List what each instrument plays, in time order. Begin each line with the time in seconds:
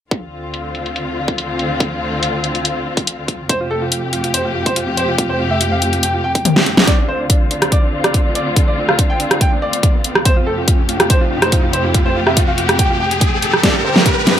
0.11 string section D2 D3 C4 F4, kick, closed hi-hat
0.54 closed hi-hat
0.75 closed hi-hat
0.86 closed hi-hat
0.96 closed hi-hat
1.28 kick, closed hi-hat
1.38 closed hi-hat
1.59 closed hi-hat
1.80 kick, closed hi-hat
2.23 closed hi-hat
2.44 closed hi-hat
2.55 closed hi-hat
2.65 closed hi-hat
2.97 kick, closed hi-hat
3.07 closed hi-hat
3.28 kick, closed hi-hat
3.49 string section F2 C3 A3 G4, grand piano C5, kick, closed hi-hat
3.61 grand piano F4
3.71 grand piano A4
3.82 grand piano F4
3.92 grand piano F4, closed hi-hat
4.13 grand piano F4, closed hi-hat
4.24 grand piano F4, closed hi-hat
4.34 grand piano C5, closed hi-hat
4.45 grand piano F4
4.55 grand piano F4
4.66 grand piano C5, kick, closed hi-hat
4.76 grand piano F4, closed hi-hat
4.87 grand piano F4
4.97 grand piano C5, closed hi-hat
5.08 grand piano F4
5.18 grand piano F4, kick, closed hi-hat
5.30 grand piano C5
5.40 grand piano F4
5.51 grand piano E5
5.61 grand piano F4, closed hi-hat
5.72 grand piano F5
5.82 grand piano F4, closed hi-hat
5.93 grand piano F4, closed hi-hat
6.03 grand piano G5, closed hi-hat
6.14 grand piano F4
6.24 grand piano G5
6.35 kick, closed hi-hat
6.45 closed hi-hat, high tom
6.56 snare
6.66 closed hi-hat
6.77 snare
6.87 string section D2 D3 C4 F4, grand piano D5, kick, closed hi-hat, riser
6.99 grand piano D4
7.09 grand piano C5
7.20 grand piano D4
7.30 grand piano D4, kick, closed hi-hat
7.51 grand piano D4, closed hi-hat
7.62 grand piano D4, cross-stick, closed hi-hat
7.72 grand piano D5, kick, closed hi-hat
7.83 grand piano D4
7.93 grand piano D4
8.04 grand piano D5, cross-stick, closed hi-hat
8.14 grand piano D4, kick, closed hi-hat
8.25 grand piano D4
8.35 grand piano D5, closed hi-hat
8.46 grand piano D4
8.56 grand piano D4, kick, closed hi-hat
8.68 grand piano D5
8.78 grand piano D4
8.89 grand piano F5, cross-stick
8.99 grand piano D4, kick, closed hi-hat
9.10 grand piano G5
9.20 grand piano D4, closed hi-hat
9.31 grand piano D4, cross-stick, closed hi-hat
9.41 grand piano G5, kick, closed hi-hat
9.52 grand piano D4
9.62 grand piano D5
9.73 closed hi-hat
9.83 kick, closed hi-hat
10.04 closed hi-hat
10.15 cross-stick
10.25 string section F2 C3 A3 G4, grand piano C5, kick, closed hi-hat
10.37 grand piano F4
10.47 grand piano A4
10.58 grand piano F4
10.68 grand piano F4, kick, closed hi-hat
10.89 grand piano F4, closed hi-hat
11.00 grand piano F4, cross-stick, closed hi-hat
11.10 grand piano C5, kick, closed hi-hat
11.21 grand piano F4
11.31 grand piano F4
11.42 grand piano C5, cross-stick, closed hi-hat
11.52 grand piano F4, kick, closed hi-hat
11.63 grand piano F4
11.73 grand piano C5, closed hi-hat
11.84 grand piano F4
11.94 grand piano F4, kick, closed hi-hat
12.06 grand piano C5
12.16 grand piano F4
12.27 grand piano E5, cross-stick
12.37 grand piano F4, kick, closed hi-hat
12.48 grand piano F5
12.58 grand piano F4, closed hi-hat
12.69 grand piano F4, cross-stick, closed hi-hat
12.79 grand piano G5, kick, closed hi-hat
12.90 grand piano F4
13.00 grand piano G5
13.11 closed hi-hat
13.21 kick, closed hi-hat
13.42 closed hi-hat
13.53 cross-stick
13.63 string section G2 D3 A#3, grand piano D5, kick, snare, closed hi-hat
13.75 grand piano G4
13.85 grand piano C5
13.96 grand piano G4, snare
14.06 grand piano G4, kick, closed hi-hat
14.27 grand piano G4, snare, closed hi-hat